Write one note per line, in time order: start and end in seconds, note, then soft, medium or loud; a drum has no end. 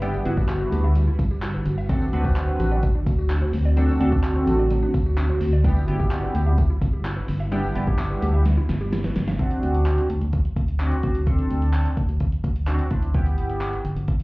0.00 0.15 G1 loud
0.00 5.60 D3 medium
0.00 1.86 G3 medium
0.00 0.09 G3 loud
0.00 0.18 B3 medium
0.00 0.18 D4 medium
0.00 0.18 E4 medium
0.00 5.60 F#4 medium
0.00 0.18 G4 loud
0.00 1.85 B4 medium
0.00 closed hi-hat medium
0.00 tambourine medium
0.14 tambourine medium
0.25 0.62 G1 loud
0.25 0.89 B3 medium
0.25 0.32 B3 medium
0.25 0.89 D4 medium
0.25 0.89 E4 medium
0.25 0.89 F#4 loud
0.25 closed hi-hat medium
0.37 0.44 G4 loud
0.37 kick medium
0.37 tambourine soft
0.49 0.56 E4 medium
0.49 clap loud
0.49 closed hi-hat medium
0.49 tambourine loud
0.60 0.67 B4 medium
0.72 1.09 D2 loud
0.72 0.79 G4 medium
0.72 closed hi-hat medium
0.72 tambourine soft
0.84 0.91 E5 medium
0.95 1.02 G3 medium
0.95 closed hi-hat medium
0.95 tambourine soft
1.07 1.14 E4 medium
1.19 1.56 G1 medium
1.19 kick loud
1.19 closed hi-hat medium
1.19 tambourine soft
1.31 1.38 G4 medium
1.31 tambourine soft
1.42 1.49 E4 loud
1.42 clap loud
1.42 closed hi-hat medium
1.42 tambourine medium
1.54 1.61 B4 medium
1.54 tambourine soft
1.66 2.03 G1 loud
1.66 closed hi-hat medium
1.66 tambourine soft
1.78 1.84 E5 loud
1.78 tambourine soft
1.89 1.96 F#3 medium
1.89 5.61 A3 medium
1.89 2.05 C4 medium
1.89 5.61 C4 medium
1.89 2.05 D4 medium
1.89 2.05 F#4 medium
1.89 2.05 A4 loud
1.89 kick loud
1.89 closed hi-hat medium
1.89 tambourine medium
2.01 tambourine medium
2.13 2.50 D2 loud
2.13 2.77 C4 medium
2.13 2.20 C4 medium
2.13 2.77 D4 medium
2.13 2.77 F#4 medium
2.13 2.77 B4 loud
2.13 closed hi-hat medium
2.25 2.31 F#4 loud
2.25 kick medium
2.25 tambourine soft
2.36 2.43 D4 medium
2.36 clap loud
2.36 closed hi-hat medium
2.36 tambourine loud
2.48 2.55 C5 medium
2.60 2.96 A1 loud
2.60 2.66 F#4 loud
2.60 closed hi-hat medium
2.60 tambourine soft
2.71 2.78 D5 medium
2.83 2.90 F#3 medium
2.83 kick medium
2.83 closed hi-hat medium
2.83 tambourine soft
2.95 3.02 D4 medium
3.06 3.43 D2 loud
3.06 kick loud
3.06 closed hi-hat medium
3.06 tambourine soft
3.18 3.25 F#4 medium
3.18 tambourine soft
3.30 3.37 D4 loud
3.30 clap loud
3.30 closed hi-hat medium
3.30 tambourine medium
3.42 3.49 C5 medium
3.53 3.90 D2 loud
3.53 open hi-hat medium
3.53 tambourine medium
3.65 3.72 D5 loud
3.76 3.84 F#3 medium
3.76 3.93 C4 medium
3.76 3.93 D4 medium
3.76 3.93 F#4 medium
3.76 3.93 A4 loud
3.76 closed hi-hat medium
3.76 tambourine medium
3.89 tambourine medium
4.00 4.37 D2 loud
4.00 4.64 C4 medium
4.00 4.07 C4 medium
4.00 4.64 D4 medium
4.00 4.64 F#4 medium
4.00 4.64 A4 loud
4.00 closed hi-hat medium
4.12 4.19 F#4 loud
4.12 kick medium
4.12 tambourine soft
4.24 4.31 D4 medium
4.24 clap loud
4.24 closed hi-hat medium
4.24 tambourine medium
4.36 4.42 C5 medium
4.47 4.84 A1 loud
4.47 4.54 F#4 medium
4.47 closed hi-hat medium
4.47 tambourine soft
4.59 4.66 D5 medium
4.71 4.77 F#3 medium
4.71 closed hi-hat medium
4.71 tambourine soft
4.83 4.89 D4 medium
4.94 5.31 D2 loud
4.94 kick loud
4.94 closed hi-hat medium
4.94 tambourine soft
5.06 5.13 F#4 medium
5.06 tambourine soft
5.18 5.24 D4 loud
5.18 clap loud
5.18 closed hi-hat medium
5.18 tambourine medium
5.29 5.36 C5 medium
5.29 tambourine soft
5.41 5.78 D2 loud
5.41 open hi-hat medium
5.41 tambourine medium
5.53 5.60 D5 loud
5.64 9.36 D3 medium
5.64 9.36 G3 medium
5.64 5.71 G3 medium
5.64 5.80 B3 medium
5.64 9.36 B3 medium
5.64 5.80 D4 medium
5.64 7.50 E4 medium
5.64 5.80 E4 medium
5.64 5.81 G4 loud
5.64 kick loud
5.64 closed hi-hat medium
5.64 tambourine medium
5.76 tambourine medium
5.88 6.25 G1 loud
5.88 6.52 B3 medium
5.88 5.95 B3 medium
5.88 6.52 D4 medium
5.88 6.52 E4 medium
5.88 6.52 G4 loud
5.88 closed hi-hat medium
6.00 6.06 G4 loud
6.00 kick medium
6.00 tambourine soft
6.11 6.18 E4 medium
6.11 clap loud
6.11 closed hi-hat medium
6.11 tambourine loud
6.23 6.30 B4 medium
6.35 6.71 D2 loud
6.35 6.42 G4 medium
6.35 closed hi-hat medium
6.35 tambourine medium
6.46 6.53 E5 medium
6.58 6.65 G3 medium
6.58 kick loud
6.58 closed hi-hat medium
6.58 tambourine soft
6.70 6.77 E4 medium
6.81 7.18 G1 loud
6.81 kick medium
6.81 closed hi-hat medium
6.81 tambourine soft
6.93 7.00 G4 medium
7.05 7.12 E4 loud
7.05 clap loud
7.05 closed hi-hat medium
7.05 tambourine medium
7.17 7.23 B4 medium
7.28 7.65 G1 loud
7.28 open hi-hat medium
7.28 tambourine medium
7.40 7.47 E5 loud
7.52 7.59 G3 loud
7.52 7.68 B3 medium
7.52 7.68 D4 medium
7.52 9.38 D4 medium
7.52 7.68 E4 medium
7.52 7.68 G4 loud
7.52 closed hi-hat medium
7.52 tambourine medium
7.64 tambourine medium
7.75 8.12 G1 loud
7.75 8.39 B3 medium
7.75 7.82 B3 medium
7.75 8.39 D4 medium
7.75 8.39 E4 medium
7.75 8.39 G4 loud
7.75 closed hi-hat medium
7.87 7.94 G4 loud
7.87 kick medium
7.99 8.05 E4 medium
7.99 clap loud
7.99 closed hi-hat medium
7.99 tambourine loud
8.11 8.17 B4 medium
8.22 8.59 D2 loud
8.22 8.29 G4 loud
8.22 closed hi-hat medium
8.22 tambourine soft
8.34 8.41 E5 medium
8.45 8.52 G3 medium
8.45 snare medium
8.45 closed hi-hat medium
8.45 tambourine soft
8.57 8.64 E4 medium
8.69 9.06 G1 loud
8.69 snare medium
8.69 closed hi-hat medium
8.69 tambourine soft
8.81 8.88 G4 medium
8.81 tambourine soft
8.93 8.99 E4 medium
8.93 snare medium
8.93 closed hi-hat medium
8.93 tambourine medium
9.04 9.11 B4 medium
9.04 snare medium
9.16 9.34 G1 loud
9.16 snare loud
9.16 closed hi-hat medium
9.16 tambourine soft
9.28 9.34 E5 loud
9.28 snare medium
9.28 tambourine soft
9.39 10.03 C4 medium
9.39 10.03 D4 medium
9.39 10.03 F#4 loud
9.39 kick loud
9.39 closed hi-hat medium
9.51 closed hi-hat medium
9.63 10.00 D2 loud
9.63 closed hi-hat medium
9.75 closed hi-hat soft
9.86 clap loud
9.86 closed hi-hat medium
9.98 closed hi-hat medium
10.10 10.19 D2 medium
10.10 closed hi-hat medium
10.21 10.49 D2 loud
10.21 closed hi-hat soft
10.33 kick medium
10.33 closed hi-hat medium
10.45 closed hi-hat soft
10.56 10.93 D2 loud
10.56 kick medium
10.56 closed hi-hat medium
10.68 closed hi-hat medium
10.80 10.96 C4 medium
10.80 10.96 D4 medium
10.80 10.96 F#4 medium
10.80 clap loud
10.80 closed hi-hat medium
10.92 closed hi-hat medium
11.03 11.40 D2 loud
11.03 11.19 C4 medium
11.03 11.19 D4 medium
11.03 11.20 F#4 medium
11.03 kick loud
11.03 closed hi-hat medium
11.15 closed hi-hat medium
11.27 11.91 C4 medium
11.27 11.91 D4 medium
11.27 11.91 A4 loud
11.27 kick loud
11.27 closed hi-hat medium
11.39 closed hi-hat medium
11.50 11.87 D2 loud
11.50 closed hi-hat medium
11.62 closed hi-hat soft
11.73 clap loud
11.73 closed hi-hat medium
11.86 closed hi-hat medium
11.97 12.06 D2 medium
11.97 kick medium
11.97 closed hi-hat medium
12.09 12.37 D2 medium
12.09 closed hi-hat soft
12.20 kick medium
12.20 closed hi-hat medium
12.32 closed hi-hat soft
12.44 12.81 D2 loud
12.44 kick medium
12.44 closed hi-hat medium
12.56 closed hi-hat medium
12.67 12.83 C4 medium
12.67 12.83 D4 medium
12.67 12.84 F#4 medium
12.67 clap loud
12.67 closed hi-hat medium
12.79 closed hi-hat medium
12.91 13.39 D2 loud
12.91 13.07 C4 medium
12.91 13.07 D4 medium
12.91 13.07 E4 medium
12.91 kick loud
12.91 closed hi-hat medium
13.03 closed hi-hat medium
13.14 13.78 B3 medium
13.14 13.78 E4 medium
13.14 13.78 G4 loud
13.14 kick loud
13.14 closed hi-hat medium
13.26 closed hi-hat medium
13.38 13.75 G1 medium
13.38 closed hi-hat medium
13.50 closed hi-hat soft
13.61 clap loud
13.61 closed hi-hat medium
13.73 closed hi-hat medium
13.85 13.94 G1 medium
13.85 closed hi-hat medium
13.96 14.23 G1 medium
13.96 closed hi-hat soft
14.08 kick medium
14.08 closed hi-hat medium
14.20 closed hi-hat soft